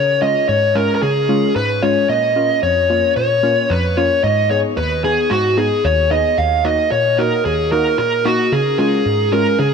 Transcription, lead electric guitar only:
Already playing: C#5
0.22 D#5
0.49 C#5
0.75 A#4
0.95 A#4
1.02 G#4
1.56 B4
1.83 C#5
2.09 D#5
2.63 C#5
3.16 C#5
3.70 B4
3.97 C#5
4.24 D#5
4.50 C#5
4.77 B4
5.04 G#4
5.31 F#4
5.58 G#4
5.85 C#5
6.11 D#5
6.38 F5
6.65 D#5
6.91 C#5
7.18 A#4
7.45 G#4
7.72 A#4
7.99 A#4
8.26 F#4
8.52 G#4
8.79 G#4
9.33 A#4
9.60 G#4

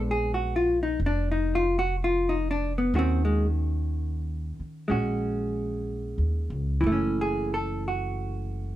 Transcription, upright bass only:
Already playing: A#1
1.00 F1
2.94 D#2
4.59 muted upright bass stroke
4.90 A#1
6.18 D#2
6.50 C#2
6.83 F#1

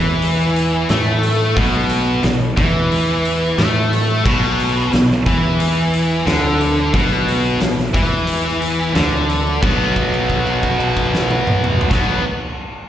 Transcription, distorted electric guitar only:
Already playing: E3
0.90 A3
1.56 B2
2.24 B2
2.57 E3
3.58 A3
4.25 B2
4.93 B2
5.27 E3
6.26 D3
6.94 B2
7.61 B2
7.94 E3
8.95 D3
9.62 B2 F#3 B3
11.89 B2 F#3
11.94 B3

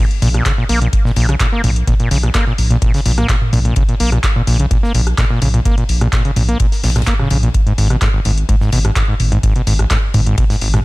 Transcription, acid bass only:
0.22 A#2
0.34 A#2
0.46 C#3
0.58 A#2
0.69 A#3
0.82 A#2
1.05 A#2
1.17 A#2
1.29 C#3
1.40 A#2
1.53 A#3
1.64 A#2
1.87 A#2
2.00 A#2
2.11 C#3
2.23 A#2
2.35 A#3
2.47 A#2
2.71 A#2
2.82 A#2
2.94 C#3
3.06 A#2
3.18 A#3
3.29 A#2
3.53 A#2
3.65 A#2
3.76 C#3
3.89 A#2
4.00 A#3
4.12 A#2
4.36 A#2
4.47 A#2
4.60 C#3
4.71 A#2
4.83 A#3
4.95 A#2
5.18 A#2
5.30 A#2
5.42 C#3
5.54 A#2
5.65 A#3
5.78 A#2
6.01 A#2
6.13 A#2
6.25 C#3
6.36 A#2
6.49 A#3
6.60 A#2
6.84 A#2
6.96 A#2
7.07 A#3
7.19 C#3
7.31 C#3
7.43 A#2
7.67 G#2
7.78 G#2
7.90 B2
8.02 G#2
8.14 G#1
8.25 G#2
8.49 G#2
8.61 G#2
8.73 B2
8.85 G#2
8.96 G#1
9.08 G#2
9.32 G#2
9.43 G#2
9.56 B2
9.67 G#2
9.79 G#1
9.91 G#2
10.14 G#2
10.27 G#2
10.38 B2
10.50 G#2
10.61 G#1
10.74 G#2

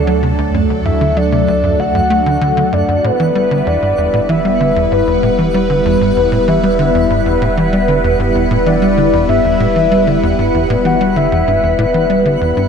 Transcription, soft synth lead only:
Already playing: D5
0.86 E5
1.17 D5
1.80 F#5
2.73 D5
3.05 B4
3.67 D5
4.30 E5
4.93 B4
5.55 B4
6.49 E5
8.67 D5
9.29 E5
10.86 F#5
11.17 E5
11.79 B4

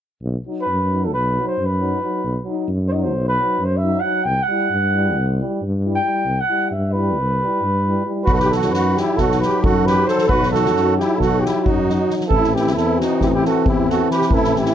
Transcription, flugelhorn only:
0.61 B4
1.04 A4
1.13 B4
1.47 C5
1.66 B4
2.88 C5 D#5
3.02 C5
3.28 B4
3.65 C5
3.77 E5
4.00 F#5
4.24 G5
4.43 F#5
5.95 G5
6.40 F#5
6.71 E5
6.92 B4
8.24 B4
8.32 A4 B4
8.49 A4
8.70 B4
8.95 G4
9.16 A4
9.40 B4
9.63 A4
9.86 B4
10.07 C5
10.28 B4
10.51 A4
10.97 G4
11.18 A4
11.40 G4
11.63 F#4
12.29 A4
12.54 G4
12.75 A4
12.99 F#4
13.21 F#4 G4
13.34 G4
13.46 A4
13.68 G4
13.90 A4
14.11 B4
14.34 A4
14.58 G4

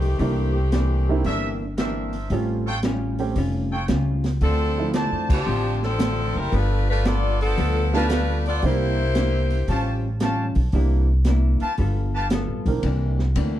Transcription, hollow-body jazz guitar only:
0.19 C3 E3 A#3 D4
0.73 C3 E3 A#3 D4
1.26 C3 E3 A#3 D4
1.78 C3 E3 A#3 D4
2.31 A2 G3 C#4 F4
2.84 A2 G3 C#4 F4
3.36 A2 G3 C#4 F4
3.88 A2 G3 C#4 F4
4.42 D3 A3 C4 F4
4.94 D3 A3 C4 F4
5.46 D3 A3 C4 F4
5.98 D3 A3 C4 F4
6.52 G3 B3 F4 A4
7.05 G3 B3 F4 A4
7.58 G3 B3 F4 A4
8.11 G3 B3 F4 A4
8.64 C3 A#3 D4 E4
9.17 C3 A#3 D4 E4
9.69 A2 G3 C#4 F4
10.20 A2 G3 C#4 F4
10.73 C3 A#3 D4 E4
11.27 C3 A#3 D4 E4
11.79 G3 B3 F4 A4
12.31 G3 B3 F4 A4
12.84 C3 E3 A#3 D4
13.36 C3 E3 A#3 D4

